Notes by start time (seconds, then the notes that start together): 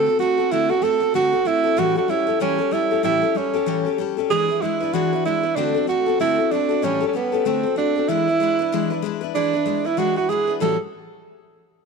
Already playing: A4
0.07 C4 F#4 A4
0.19 A3 C4 F#4 A4
0.38 C4 F#4 A4
0.51 D3 A3 C4 E4 F#4 A4
0.69 C4 F#4 A4
0.82 A3 C4 F#4 A4
1.00 C4 F#4 A4
1.14 D3 A3 C4 F#4 A4
1.33 C4 F#4 A4
1.45 A3 C4 E4 F#4 A4
1.64 C4 F#4 A4
1.77 A2 E3 G3 C#4 F#4 G4 A4
1.95 G3 C#4 F#4 G4 A4
2.08 G3 C#4 E4 G4 A4
2.27 G3 C#4 G4 A4
2.40 A2 E3 G3 C#4 G4 A4
2.58 G3 C#4 G4 A4
2.71 G3 C#4 E4 G4 A4
2.91 G3 C#4 G4 A4
3.03 A2 E3 G3 C#4 E4 G4 A4
3.22 G3 C#4 G4 A4
3.35 G3 C#4 G4 A4
3.54 G3 C#4 G4 A4
3.66 A2 E3 G3 C#4 G4 A4
3.85 G3 C#4 G4 A4
3.98 G3 C#4 G4 A4
4.17 G3 C#4 G4 A4
4.30 E3 G#3 D4 E4 G#4 B4
4.49 D4 E4 B4
4.62 G#3 D4 E4 B4
4.80 D4 E4 B4
4.93 E3 G#3 D4 E4 F#4 B4
5.13 D4 E4 B4
5.25 G#3 D4 E4 B4
5.43 D4 E4 B4
5.56 D3 A3 C4 D4 F#4 A4
5.74 C4 F#4 A4
5.87 A3 C4 F#4 A4
6.06 C4 F#4 A4
6.19 D3 A3 C4 E4 F#4 A4
6.38 C4 F#4 A4
6.51 A3 C4 D4 F#4 A4
6.69 C4 F#4 A4
6.82 A2 E3 G3 C#4 G4 A4
7.00 G3 C#4 G4 A4
7.09 C#4
7.13 G3 B3 C#4 G4 A4
7.32 G3 C#4 G4 A4
7.45 D3 A3 C4 F#4 A4
7.63 C4 F#4 A4
7.76 A3 C4 D4 F#4 A4
7.95 C4 F#4 A4
8.08 E3 G#3 D4 E4 B4
8.27 D4 E4 B4
8.40 G#3 D4 E4 B4
8.59 D4 E4 B4
8.72 E3 G#3 D4 E4 B4
8.90 D4 E4 B4
9.02 G#3 D4 E4 B4
9.21 D4 E4 B4
9.35 E3 G#3 D4 E4 B4
9.53 D4 E4 B4
9.66 G#3 D4 E4 B4
9.85 D4 E4 B4
9.97 E3 G#3 D4 E4 F#4 B4
10.16 D4 E4 F#4 B4
10.29 G#3 D4 E4 G#4 B4
10.47 D4 E4 B4
10.60 A2 E3 G3 C#4 F#4 A4